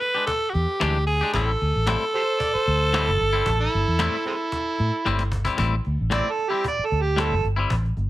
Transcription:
0.00 tenor saxophone B4, cajon slap
0.14 clean electric guitar G#3 D4 G4
0.26 tenor saxophone A4, cajon bass, cajon slap
0.50 tenor saxophone F#4 G4
0.54 fingered electric bass E2, cajon slap
0.80 fingered electric bass D2, clean electric guitar E3 G#3 D4 G4, cajon slap
1.07 tenor saxophone G#4, cajon slap
1.21 clean electric guitar G#3 D4 G4, cajon slap
1.34 fingered electric bass A1, clean electric guitar A2 G3 C4 E4, tenor saxophone A4, cajon bass
1.60 fingered electric bass D2, cajon slap
1.76 fingered electric bass A1
1.87 clean electric guitar A2 G3 C4 E4, cajon bass, cajon slap
2.14 harmonica G4 A4 C5, cajon slap
2.40 harmonica D5, cajon bass
2.53 harmonica C5, muted fingered electric bass stroke
2.67 fingered electric bass D2, cajon slap
2.93 clean electric guitar A2 G3 C4 E4, cajon slap
3.06 fingered electric bass G1, harmonica A4
3.20 fingered electric bass G1, cajon slap
3.33 clean electric guitar G3 C4 E4, cajon slap
3.46 fingered electric bass A1, cajon bass
3.60 harmonica E4
3.72 fingered electric bass G1, cajon slap
3.88 fingered electric bass E2
3.99 clean electric guitar A2 G3 C4 E4, cajon bass, cajon slap
4.25 harmonica G#3 C4 E4, cajon slap
4.52 cajon bass, cajon slap
4.79 fingered electric bass A2, cajon slap
5.05 fingered electric bass G1, clean electric guitar A2 G3 C4 E4, cajon slap
5.19 cajon slap
5.32 cajon bass
5.45 clean electric guitar G3 C4 E4, cajon bass
5.57 fingered electric bass A1, clean electric guitar A2 G3 C4 E4, cajon bass
5.85 fingered electric bass D2, cajon slap
6.01 fingered electric bass A1
6.10 clean electric guitar A2 G3 C4 E4, harmonica D5, cajon bass, cajon slap
6.31 harmonica A4
6.38 cajon slap
6.49 clean electric guitar C4 E4, harmonica G4
6.53 clean electric guitar G3
6.64 harmonica D5, cajon bass
6.79 muted fingered electric bass stroke
6.85 harmonica A4
6.91 fingered electric bass D2, cajon slap
7.02 harmonica G4
7.16 clean electric guitar A2 G3 C4 E4, harmonica A4, cajon slap
7.32 fingered electric bass G1
7.44 fingered electric bass G1, cajon slap
7.56 clean electric guitar G3 C4 E4
7.70 fingered electric bass A1, cajon bass
7.85 cajon slap
7.97 fingered electric bass G1, cajon slap

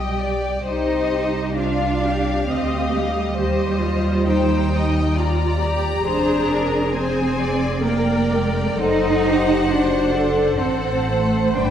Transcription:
Already playing: double bass section B1, cello section G3, viola section G4, violin section D#5 G5
0.20 violin section D5
0.66 double bass section C2, cello section D#4, viola section G4, violin section C5 D#5
1.58 cello section D4, viola section F4, violin section F5
2.03 viola section G4
2.49 double bass section D2, cello section C4, violin section D#5
2.95 cello section G3
3.38 double bass section D#2, viola section G4, violin section C5 D#5
3.81 viola section F4
4.26 viola section D#4, violin section C5 G5
4.73 violin section D#5
5.15 viola section F4, violin section D5 A#5
5.60 viola section G4
6.03 double bass section F1, cello section D4, viola section G#4, violin section C5
6.50 violin section A#4
6.94 cello section C4, violin section C5 G#5
7.39 violin section D5
7.83 cello section A#3, viola section A#4, violin section D5 G5
8.33 cello section G#3
8.79 double bass section F#1, cello section D#4, viola section A4, violin section C5 F#5
9.24 viola section G4
9.69 cello section D4, viola section F#4
10.13 viola section A4
10.58 double bass section A1, cello section C4, violin section A4 F#5, viola section C5
11.06 cello section A3
11.54 double bass section G1, cello section D4, violin section B4 G5

